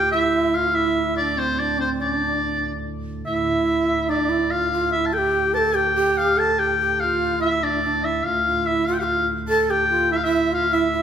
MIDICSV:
0, 0, Header, 1, 4, 480
1, 0, Start_track
1, 0, Key_signature, -1, "minor"
1, 0, Tempo, 415225
1, 872, Time_signature, 6, 3, 24, 8
1, 12743, End_track
2, 0, Start_track
2, 0, Title_t, "Shawm"
2, 0, Program_c, 0, 111
2, 0, Note_on_c, 0, 79, 96
2, 128, Note_off_c, 0, 79, 0
2, 135, Note_on_c, 0, 76, 93
2, 632, Note_on_c, 0, 77, 81
2, 649, Note_off_c, 0, 76, 0
2, 866, Note_on_c, 0, 76, 88
2, 883, Note_off_c, 0, 77, 0
2, 1344, Note_off_c, 0, 76, 0
2, 1351, Note_on_c, 0, 74, 87
2, 1598, Note_on_c, 0, 72, 82
2, 1616, Note_off_c, 0, 74, 0
2, 1837, Note_on_c, 0, 74, 78
2, 1855, Note_off_c, 0, 72, 0
2, 2077, Note_off_c, 0, 74, 0
2, 2085, Note_on_c, 0, 72, 67
2, 2191, Note_off_c, 0, 72, 0
2, 2326, Note_on_c, 0, 74, 71
2, 3238, Note_off_c, 0, 74, 0
2, 3773, Note_on_c, 0, 76, 79
2, 4682, Note_off_c, 0, 76, 0
2, 4734, Note_on_c, 0, 74, 84
2, 5208, Note_on_c, 0, 77, 92
2, 5225, Note_off_c, 0, 74, 0
2, 5674, Note_off_c, 0, 77, 0
2, 5681, Note_on_c, 0, 76, 92
2, 5847, Note_on_c, 0, 81, 68
2, 5864, Note_off_c, 0, 76, 0
2, 5929, Note_on_c, 0, 79, 100
2, 5946, Note_off_c, 0, 81, 0
2, 6400, Note_off_c, 0, 79, 0
2, 6407, Note_on_c, 0, 81, 88
2, 6646, Note_on_c, 0, 79, 96
2, 6663, Note_off_c, 0, 81, 0
2, 7137, Note_on_c, 0, 77, 96
2, 7154, Note_off_c, 0, 79, 0
2, 7379, Note_on_c, 0, 81, 97
2, 7396, Note_off_c, 0, 77, 0
2, 7615, Note_on_c, 0, 79, 94
2, 7633, Note_off_c, 0, 81, 0
2, 8092, Note_on_c, 0, 77, 91
2, 8109, Note_off_c, 0, 79, 0
2, 8561, Note_off_c, 0, 77, 0
2, 8568, Note_on_c, 0, 76, 86
2, 8821, Note_on_c, 0, 74, 80
2, 8838, Note_off_c, 0, 76, 0
2, 9294, Note_on_c, 0, 76, 78
2, 9312, Note_off_c, 0, 74, 0
2, 9541, Note_on_c, 0, 77, 80
2, 9558, Note_off_c, 0, 76, 0
2, 10013, Note_on_c, 0, 76, 81
2, 10030, Note_off_c, 0, 77, 0
2, 10248, Note_on_c, 0, 77, 73
2, 10265, Note_off_c, 0, 76, 0
2, 10324, Note_on_c, 0, 79, 59
2, 10342, Note_off_c, 0, 77, 0
2, 10398, Note_on_c, 0, 77, 72
2, 10415, Note_off_c, 0, 79, 0
2, 10719, Note_off_c, 0, 77, 0
2, 10971, Note_on_c, 0, 81, 100
2, 11118, Note_off_c, 0, 81, 0
2, 11118, Note_on_c, 0, 81, 70
2, 11212, Note_on_c, 0, 79, 98
2, 11229, Note_off_c, 0, 81, 0
2, 11681, Note_off_c, 0, 79, 0
2, 11699, Note_on_c, 0, 76, 90
2, 11752, Note_on_c, 0, 77, 79
2, 11769, Note_off_c, 0, 76, 0
2, 11835, Note_on_c, 0, 76, 87
2, 11852, Note_off_c, 0, 77, 0
2, 12155, Note_off_c, 0, 76, 0
2, 12182, Note_on_c, 0, 77, 82
2, 12407, Note_on_c, 0, 76, 90
2, 12425, Note_off_c, 0, 77, 0
2, 12743, Note_off_c, 0, 76, 0
2, 12743, End_track
3, 0, Start_track
3, 0, Title_t, "Shakuhachi"
3, 0, Program_c, 1, 77
3, 0, Note_on_c, 1, 67, 79
3, 163, Note_on_c, 1, 64, 79
3, 180, Note_off_c, 1, 67, 0
3, 639, Note_on_c, 1, 65, 81
3, 656, Note_off_c, 1, 64, 0
3, 862, Note_on_c, 1, 64, 82
3, 880, Note_off_c, 1, 65, 0
3, 1339, Note_off_c, 1, 64, 0
3, 1339, Note_on_c, 1, 64, 68
3, 1395, Note_on_c, 1, 62, 74
3, 1407, Note_off_c, 1, 64, 0
3, 1583, Note_on_c, 1, 60, 66
3, 1601, Note_off_c, 1, 62, 0
3, 1850, Note_on_c, 1, 62, 66
3, 1867, Note_off_c, 1, 60, 0
3, 2067, Note_on_c, 1, 60, 68
3, 2084, Note_off_c, 1, 62, 0
3, 2326, Note_on_c, 1, 61, 65
3, 2344, Note_off_c, 1, 60, 0
3, 2500, Note_off_c, 1, 61, 0
3, 2500, Note_on_c, 1, 62, 65
3, 3284, Note_off_c, 1, 62, 0
3, 3768, Note_on_c, 1, 64, 76
3, 4727, Note_on_c, 1, 62, 74
3, 4745, Note_off_c, 1, 64, 0
3, 4963, Note_on_c, 1, 64, 77
3, 4981, Note_off_c, 1, 62, 0
3, 5215, Note_on_c, 1, 65, 79
3, 5232, Note_off_c, 1, 64, 0
3, 5449, Note_off_c, 1, 65, 0
3, 5459, Note_on_c, 1, 65, 75
3, 5674, Note_off_c, 1, 65, 0
3, 5674, Note_on_c, 1, 65, 68
3, 5731, Note_on_c, 1, 64, 74
3, 5743, Note_off_c, 1, 65, 0
3, 5932, Note_on_c, 1, 69, 78
3, 5950, Note_off_c, 1, 64, 0
3, 5986, Note_on_c, 1, 67, 85
3, 5998, Note_off_c, 1, 69, 0
3, 6404, Note_on_c, 1, 71, 84
3, 6421, Note_off_c, 1, 67, 0
3, 6442, Note_on_c, 1, 69, 91
3, 6453, Note_off_c, 1, 71, 0
3, 6642, Note_on_c, 1, 67, 83
3, 6659, Note_off_c, 1, 69, 0
3, 6879, Note_off_c, 1, 67, 0
3, 6886, Note_on_c, 1, 67, 88
3, 7359, Note_on_c, 1, 69, 83
3, 7376, Note_off_c, 1, 67, 0
3, 7620, Note_on_c, 1, 67, 75
3, 7637, Note_off_c, 1, 69, 0
3, 7844, Note_off_c, 1, 67, 0
3, 7851, Note_on_c, 1, 67, 79
3, 8090, Note_off_c, 1, 67, 0
3, 8090, Note_on_c, 1, 67, 74
3, 8138, Note_on_c, 1, 65, 80
3, 8150, Note_off_c, 1, 67, 0
3, 8561, Note_on_c, 1, 64, 73
3, 8578, Note_off_c, 1, 65, 0
3, 8816, Note_on_c, 1, 62, 65
3, 8833, Note_off_c, 1, 64, 0
3, 9048, Note_off_c, 1, 62, 0
3, 9057, Note_on_c, 1, 62, 64
3, 9305, Note_on_c, 1, 64, 70
3, 9322, Note_off_c, 1, 62, 0
3, 9541, Note_on_c, 1, 65, 70
3, 9559, Note_off_c, 1, 64, 0
3, 9766, Note_off_c, 1, 65, 0
3, 9773, Note_on_c, 1, 65, 66
3, 10025, Note_on_c, 1, 64, 75
3, 10042, Note_off_c, 1, 65, 0
3, 10251, Note_off_c, 1, 64, 0
3, 10259, Note_on_c, 1, 65, 68
3, 10393, Note_off_c, 1, 65, 0
3, 10411, Note_on_c, 1, 67, 60
3, 10451, Note_on_c, 1, 65, 66
3, 10462, Note_off_c, 1, 67, 0
3, 10704, Note_off_c, 1, 65, 0
3, 10964, Note_on_c, 1, 69, 88
3, 11218, Note_on_c, 1, 67, 78
3, 11235, Note_off_c, 1, 69, 0
3, 11434, Note_off_c, 1, 67, 0
3, 11441, Note_on_c, 1, 65, 82
3, 11684, Note_on_c, 1, 64, 76
3, 11701, Note_off_c, 1, 65, 0
3, 11827, Note_off_c, 1, 64, 0
3, 11834, Note_on_c, 1, 64, 86
3, 12162, Note_on_c, 1, 65, 89
3, 12179, Note_off_c, 1, 64, 0
3, 12374, Note_off_c, 1, 65, 0
3, 12381, Note_on_c, 1, 64, 87
3, 12607, Note_off_c, 1, 64, 0
3, 12626, Note_on_c, 1, 64, 70
3, 12743, Note_off_c, 1, 64, 0
3, 12743, End_track
4, 0, Start_track
4, 0, Title_t, "Pipe organ"
4, 0, Program_c, 2, 19
4, 0, Note_on_c, 2, 38, 53
4, 0, Note_on_c, 2, 45, 49
4, 3736, Note_off_c, 2, 45, 0
4, 3737, Note_off_c, 2, 38, 0
4, 3759, Note_on_c, 2, 45, 51
4, 3760, Note_on_c, 2, 38, 52
4, 9497, Note_off_c, 2, 45, 0
4, 9504, Note_off_c, 2, 38, 0
4, 9520, Note_on_c, 2, 45, 52
4, 9528, Note_on_c, 2, 38, 55
4, 12743, Note_off_c, 2, 38, 0
4, 12743, Note_off_c, 2, 45, 0
4, 12743, End_track
0, 0, End_of_file